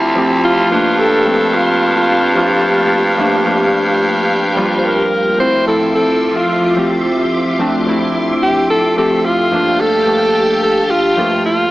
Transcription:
0.00 0.67 D2 medium
0.00 0.15 F3 medium
0.00 0.16 A3 medium
0.00 0.17 C4 medium
0.00 0.73 E4 loud
0.00 0.67 F4 medium
0.00 0.18 G4 medium
0.00 0.67 E5 medium
0.00 0.67 C6 medium
0.00 0.67 D6 medium
0.15 0.69 F3 medium
0.15 0.70 A3 medium
0.15 0.72 C4 medium
0.15 0.72 G4 medium
0.45 1.01 F4 loud
0.70 5.08 G2 medium
0.70 1.15 F3 medium
0.70 1.16 A3 medium
0.70 1.16 A#3 medium
0.70 1.17 D4 medium
0.70 5.35 G4 medium
0.70 5.35 F5 medium
0.70 2.89 A5 medium
1.00 1.56 A4 loud
1.25 2.14 F3 medium
1.25 2.14 A3 medium
1.25 2.15 A#3 medium
1.25 2.15 C4 medium
1.55 1.96 F4 medium
1.97 2.47 F4 medium
2.35 3.02 F3 medium
2.35 3.03 A3 medium
2.35 3.03 A#3 medium
2.35 3.04 F4 medium
2.91 5.37 G5 medium
3.18 3.41 F3 medium
3.18 3.41 A3 medium
3.18 3.42 A#3 medium
3.18 3.42 D4 loud
3.45 4.34 F3 medium
3.45 4.35 A3 medium
3.45 4.35 A#3 medium
3.45 4.36 D4 medium
4.55 5.22 F3 medium
4.55 5.23 G3 medium
4.55 5.23 A#3 medium
4.55 5.24 F4 medium
4.78 4.86 C5 medium
4.85 5.39 A#4 loud
5.38 5.61 D2 medium
5.38 5.61 F3 medium
5.38 9.48 F3 medium
5.38 5.62 A3 medium
5.38 5.62 C4 medium
5.38 5.62 E4 medium
5.38 5.65 C5 loud
5.38 9.48 E5 medium
5.38 9.48 C6 medium
5.38 9.48 D6 medium
5.66 6.54 D2 medium
5.66 6.55 F3 medium
5.66 6.55 A3 medium
5.66 6.55 C4 medium
5.66 6.56 E4 medium
5.66 5.93 A4 medium
5.95 6.38 A4 medium
6.37 6.91 F4 medium
6.76 7.43 D2 medium
6.76 7.43 F3 medium
6.76 7.43 A3 medium
6.76 7.44 C4 medium
6.76 7.44 G4 medium
7.58 7.81 D2 medium
7.58 7.81 F3 medium
7.58 7.82 A3 medium
7.58 7.82 C4 medium
7.58 7.82 D4 loud
7.86 8.75 D2 medium
7.86 8.75 F3 medium
7.86 8.75 A3 medium
7.86 8.76 C4 medium
7.86 8.76 E4 medium
8.43 8.68 G4 loud
8.70 8.95 A4 loud
8.96 9.51 D2 medium
8.96 9.50 F3 medium
8.96 9.51 A3 medium
8.96 9.52 C4 medium
8.96 9.53 G4 medium
8.96 9.27 A4 loud
9.25 9.82 F4 loud
9.51 9.96 G2 medium
9.51 9.96 F3 medium
9.51 9.97 A3 medium
9.51 9.97 A#3 medium
9.51 9.97 D4 medium
9.51 11.71 G4 medium
9.51 11.71 F5 medium
9.51 11.71 G5 medium
9.51 11.71 A5 medium
9.80 10.62 A4 loud
10.06 10.95 G2 medium
10.06 10.95 F3 medium
10.06 10.95 A3 medium
10.06 10.96 A#3 medium
10.06 10.96 D4 medium
10.63 10.92 A4 loud
10.90 11.45 F4 medium
11.16 11.71 G2 medium
11.16 11.71 F3 medium
11.16 11.71 A3 medium
11.16 11.71 A#3 medium
11.16 11.71 F4 medium
11.46 11.71 F4 medium

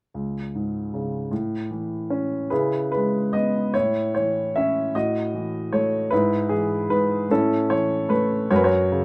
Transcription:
0.14 1.28 C#2 soft
0.55 1.30 G#2 soft
0.94 1.30 C#3 soft
1.31 2.47 A2 soft
1.71 2.49 E3 soft
2.10 2.50 C#4 soft
2.50 3.72 C#3 soft
2.50 3.71 E4 soft
2.50 3.71 G#4 soft
2.50 2.90 B4 soft
2.92 3.73 G#3 soft
2.92 3.35 B4 soft
3.33 3.74 B3 soft
3.33 3.75 D#5 soft
3.74 4.92 A2 soft
3.74 4.91 E4 soft
3.74 4.13 C#5 medium
4.15 4.93 E3 soft
4.15 4.52 C#5 soft
4.56 4.95 C#4 soft
4.56 4.96 E5 medium
4.95 6.08 A2 soft
4.95 6.08 F#4 soft
4.95 5.69 D#5 medium
5.34 6.10 E3 soft
5.72 6.10 A3 soft
5.72 6.13 C#5 medium
6.11 6.88 G#2 soft
6.11 7.26 E4 soft
6.11 6.51 B4 medium
6.49 7.28 E3 soft
6.49 6.90 G#4 medium
6.90 7.28 G#2 soft
6.90 7.31 B4 medium
7.30 8.47 A2 soft
7.30 8.48 C#4 soft
7.30 8.48 E4 soft
7.30 7.72 A4 medium
7.70 8.48 E3 soft
7.70 8.12 C#5 medium
8.09 8.49 A3 soft
8.09 8.48 B4 medium
8.50 9.05 F#2 soft
8.50 8.63 F#4 soft
8.50 8.63 A#4 soft
8.50 8.58 C#5 medium
8.56 8.64 B4 medium
8.64 9.05 F#4 soft
8.64 9.05 A#4 soft
8.64 9.05 C#5 medium
8.92 9.05 C#3 soft

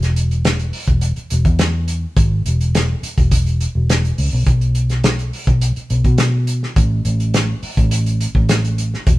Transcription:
0.00 0.70 E1 medium
0.00 snare soft
0.00 closed hi-hat soft
0.16 closed hi-hat medium
0.31 closed hi-hat soft
0.45 snare loud
0.45 closed hi-hat medium
0.59 closed hi-hat soft
0.73 open hi-hat medium
0.87 1.11 E1 medium
0.87 kick medium
0.87 closed hi-hat soft
1.01 closed hi-hat medium
1.16 muted fingered electric bass stroke soft
1.16 closed hi-hat soft
1.30 1.44 E1 medium
1.30 closed hi-hat medium
1.45 2.04 E2 medium
1.45 kick medium
1.45 closed hi-hat soft
1.59 snare loud
1.59 closed hi-hat medium
1.88 closed hi-hat medium
2.17 2.41 G#1 loud
2.17 kick loud
2.17 closed hi-hat medium
2.46 2.94 E1 medium
2.46 closed hi-hat medium
2.61 closed hi-hat soft
2.75 snare loud
2.75 closed hi-hat medium
3.03 muted fingered electric bass stroke soft
3.03 closed hi-hat medium
3.18 3.65 E1 medium
3.18 kick medium
3.18 closed hi-hat soft
3.31 kick medium
3.31 closed hi-hat medium
3.46 closed hi-hat soft
3.61 closed hi-hat medium
3.75 4.11 E1 medium
3.90 snare medium
3.90 closed hi-hat medium
4.05 closed hi-hat soft
4.18 4.32 C#2 medium
4.18 open hi-hat medium
4.33 4.46 B1 medium
4.46 5.30 B1 medium
4.46 kick medium
4.46 closed hi-hat medium
4.61 closed hi-hat soft
4.75 closed hi-hat medium
4.90 snare soft
4.90 closed hi-hat soft
5.04 snare loud
5.04 closed hi-hat medium
5.19 closed hi-hat soft
5.33 open hi-hat medium
5.47 5.71 B1 medium
5.47 kick medium
5.47 closed hi-hat soft
5.61 closed hi-hat medium
5.76 muted fingered electric bass stroke soft
5.76 closed hi-hat soft
5.90 6.03 B1 medium
5.90 closed hi-hat soft
6.04 6.64 B2 medium
6.04 kick medium
6.04 closed hi-hat soft
6.18 snare medium
6.18 closed hi-hat medium
6.47 closed hi-hat medium
6.63 snare soft
6.76 7.00 A1 medium
6.76 kick loud
6.76 closed hi-hat medium
7.05 7.53 A1 medium
7.05 closed hi-hat medium
7.20 closed hi-hat soft
7.34 snare loud
7.34 closed hi-hat medium
7.63 muted fingered electric bass stroke soft
7.63 open hi-hat medium
7.77 8.25 A1 medium
7.77 kick medium
7.77 closed hi-hat soft
7.91 closed hi-hat medium
8.06 closed hi-hat soft
8.21 closed hi-hat medium
8.35 8.94 A1 medium
8.35 kick medium
8.49 snare medium
8.49 closed hi-hat medium
8.65 closed hi-hat soft
8.78 closed hi-hat medium
8.94 snare soft
9.07 9.19 E1 medium
9.07 kick loud
9.07 closed hi-hat medium

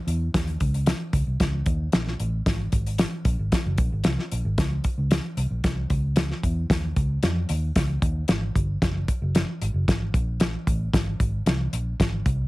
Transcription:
0.07 0.28 E2 medium
0.07 closed hi-hat medium
0.34 0.55 D#2 loud
0.34 kick loud
0.34 snare loud
0.34 closed hi-hat medium
0.47 closed hi-hat soft
0.60 0.91 C#2 medium
0.60 kick medium
0.60 closed hi-hat medium
0.74 closed hi-hat medium
0.86 snare loud
0.86 closed hi-hat loud
1.13 1.24 C#2 medium
1.13 kick medium
1.13 closed hi-hat medium
1.27 1.37 C2 medium
1.40 1.61 C#2 loud
1.40 kick medium
1.40 snare medium
1.40 closed hi-hat medium
1.66 1.87 D#2 loud
1.66 kick loud
1.66 closed hi-hat medium
1.92 2.13 A#1 medium
1.92 snare loud
1.92 closed hi-hat medium
2.07 snare soft
2.20 2.40 A1 medium
2.20 closed hi-hat medium
2.46 2.67 G#1 loud
2.46 kick loud
2.46 snare loud
2.46 closed hi-hat medium
2.72 3.03 G#1 medium
2.72 kick loud
2.72 closed hi-hat medium
2.86 closed hi-hat soft
2.98 snare loud
2.98 closed hi-hat medium
3.25 3.36 A#1 medium
3.25 kick medium
3.25 closed hi-hat medium
3.39 3.49 G#1 medium
3.52 kick medium
3.52 snare loud
3.52 closed hi-hat medium
3.66 3.76 F#1 medium
3.78 3.89 A#1 loud
3.78 kick loud
3.78 closed hi-hat medium
3.92 4.02 G#1 medium
4.04 4.16 C2 medium
4.04 snare loud
4.04 closed hi-hat medium
4.19 snare soft
4.32 4.42 A#1 medium
4.32 closed hi-hat medium
4.45 4.55 G#1 medium
4.58 4.78 C#2 loud
4.58 kick medium
4.58 snare loud
4.58 closed hi-hat medium
4.84 kick medium
4.84 closed hi-hat medium
4.98 5.18 C#2 medium
5.11 snare loud
5.11 closed hi-hat medium
5.37 5.47 C2 medium
5.37 closed hi-hat medium
5.50 5.61 A#1 medium
5.64 5.84 C2 loud
5.64 kick medium
5.64 snare medium
5.64 closed hi-hat medium
5.90 6.31 C#2 medium
5.90 kick medium
5.90 closed hi-hat medium
6.16 snare loud
6.16 closed hi-hat medium
6.31 snare soft
6.43 6.64 E2 medium
6.43 kick medium
6.43 closed hi-hat medium
6.70 6.90 D#2 loud
6.70 kick loud
6.70 snare loud
6.70 closed hi-hat medium
6.96 7.17 C#2 medium
6.96 kick medium
6.96 closed hi-hat medium
7.23 7.43 F2 loud
7.23 snare loud
7.23 closed hi-hat medium
7.49 7.70 D#2 medium
7.49 closed hi-hat medium
7.76 7.96 C#2 loud
7.76 kick medium
7.76 snare loud
7.76 closed hi-hat medium
8.02 8.23 D#2 loud
8.02 kick loud
8.02 closed hi-hat medium
8.28 8.49 G#1 medium
8.28 snare loud
8.28 closed hi-hat medium
8.55 8.76 G1 medium
8.55 kick medium
8.55 closed hi-hat medium
8.82 9.02 F#1 loud
8.82 kick loud
8.82 snare loud
8.82 closed hi-hat medium
9.08 kick medium
9.08 closed hi-hat medium
9.22 9.42 F#1 medium
9.35 snare loud
9.35 closed hi-hat loud
9.62 9.72 G#1 medium
9.62 closed hi-hat medium
9.74 9.84 F#1 medium
9.88 10.08 G#1 medium
9.88 kick medium
9.88 snare medium
9.88 closed hi-hat medium
10.14 10.55 A#1 loud
10.14 kick medium
10.14 closed hi-hat medium
10.40 snare loud
10.40 closed hi-hat medium
10.67 10.88 A1 medium
10.67 kick medium
10.67 closed hi-hat medium
10.93 11.14 G#1 loud
10.93 kick loud
10.93 snare loud
10.93 closed hi-hat medium
11.20 11.40 G#1 medium
11.20 kick medium
11.20 closed hi-hat medium
11.46 11.67 C2 medium
11.46 snare loud
11.46 closed hi-hat medium
11.73 11.93 A#1 medium
11.73 closed hi-hat medium
12.00 12.20 G#1 loud
12.00 kick medium
12.00 snare loud
12.00 closed hi-hat medium
12.26 12.48 C2 medium
12.26 kick medium
12.26 closed hi-hat medium

